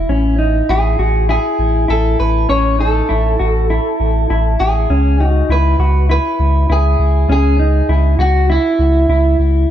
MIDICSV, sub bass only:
0, 0, Header, 1, 2, 480
1, 0, Start_track
1, 0, Tempo, 600000
1, 74, Time_signature, 4, 2, 24, 8
1, 7765, End_track
2, 0, Start_track
2, 0, Title_t, "Sub bass"
2, 0, Program_c, 0, 38
2, 69, Note_on_c, 0, 33, 106
2, 493, Note_off_c, 0, 33, 0
2, 553, Note_on_c, 0, 33, 115
2, 765, Note_off_c, 0, 33, 0
2, 789, Note_on_c, 0, 33, 111
2, 1108, Note_off_c, 0, 33, 0
2, 1271, Note_on_c, 0, 33, 99
2, 1483, Note_off_c, 0, 33, 0
2, 1516, Note_on_c, 0, 33, 119
2, 1726, Note_off_c, 0, 33, 0
2, 1760, Note_on_c, 0, 33, 102
2, 1968, Note_off_c, 0, 33, 0
2, 1995, Note_on_c, 0, 33, 101
2, 2417, Note_off_c, 0, 33, 0
2, 2480, Note_on_c, 0, 33, 100
2, 2689, Note_off_c, 0, 33, 0
2, 2722, Note_on_c, 0, 33, 96
2, 3035, Note_off_c, 0, 33, 0
2, 3199, Note_on_c, 0, 33, 99
2, 3408, Note_off_c, 0, 33, 0
2, 3442, Note_on_c, 0, 33, 112
2, 3649, Note_off_c, 0, 33, 0
2, 3682, Note_on_c, 0, 33, 87
2, 3889, Note_off_c, 0, 33, 0
2, 3917, Note_on_c, 0, 37, 100
2, 4338, Note_off_c, 0, 37, 0
2, 4392, Note_on_c, 0, 37, 104
2, 4604, Note_off_c, 0, 37, 0
2, 4631, Note_on_c, 0, 37, 105
2, 4949, Note_off_c, 0, 37, 0
2, 5115, Note_on_c, 0, 37, 107
2, 5325, Note_off_c, 0, 37, 0
2, 5355, Note_on_c, 0, 37, 109
2, 5566, Note_off_c, 0, 37, 0
2, 5592, Note_on_c, 0, 37, 92
2, 5804, Note_off_c, 0, 37, 0
2, 5830, Note_on_c, 0, 37, 102
2, 6254, Note_off_c, 0, 37, 0
2, 6310, Note_on_c, 0, 37, 114
2, 6523, Note_off_c, 0, 37, 0
2, 6546, Note_on_c, 0, 37, 95
2, 6866, Note_off_c, 0, 37, 0
2, 7032, Note_on_c, 0, 37, 105
2, 7244, Note_off_c, 0, 37, 0
2, 7270, Note_on_c, 0, 37, 113
2, 7483, Note_off_c, 0, 37, 0
2, 7511, Note_on_c, 0, 37, 100
2, 7724, Note_off_c, 0, 37, 0
2, 7765, End_track
0, 0, End_of_file